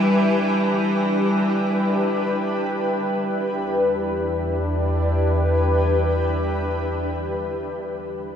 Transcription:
0.00 2.32 E3 medium
0.00 3.62 G3 medium
0.00 3.48 D4 medium
0.00 3.49 E4 medium
0.00 3.50 G4 medium
0.00 3.52 G4 medium
0.00 3.51 B4 medium
3.47 7.07 E2 medium
3.47 7.08 E3 medium
3.47 7.09 D4 medium
3.66 7.27 E4 medium
3.84 7.45 G4 medium
4.02 7.63 B4 medium

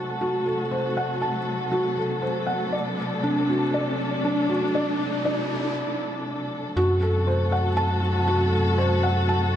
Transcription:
0.00 6.73 C3 medium
0.00 6.73 F#3 medium
0.00 6.72 A3 medium
0.00 0.21 F#4 medium
0.00 2.69 F#4 medium
0.00 0.46 A4 medium
0.00 6.72 A4 medium
0.00 0.71 C5 medium
0.00 0.97 F#5 medium
0.00 1.22 A5 medium
0.00 riser medium
0.21 0.45 F#4 medium
0.46 0.60 A4 medium
0.71 0.86 C5 medium
0.97 1.11 F#5 medium
1.22 1.36 A5 medium
1.72 1.96 F#4 medium
1.97 2.21 A4 medium
2.22 2.46 C5 medium
2.47 2.62 F#5 medium
2.73 6.72 D4 medium
2.73 2.97 D5 medium
3.23 3.47 D4 medium
3.49 3.63 F#4 medium
3.74 3.98 D5 medium
4.25 4.48 D4 medium
4.49 4.64 F#4 medium
4.75 4.99 D5 medium
5.25 5.49 D5 medium
6.76 9.56 F#2 medium
6.76 9.56 C3 medium
6.76 9.56 F#3 medium
6.76 9.56 A3 medium
6.76 9.56 F#4 medium
6.76 7.00 F#4 loud
6.76 9.56 A4 medium
7.02 7.26 A4 medium
7.27 7.51 C5 medium
7.52 7.67 F#5 medium
7.77 8.01 A5 medium
8.28 8.52 F#4 medium
8.53 8.67 A4 medium
8.78 8.93 C5 medium
9.03 9.18 F#5 medium
9.29 9.43 A5 medium

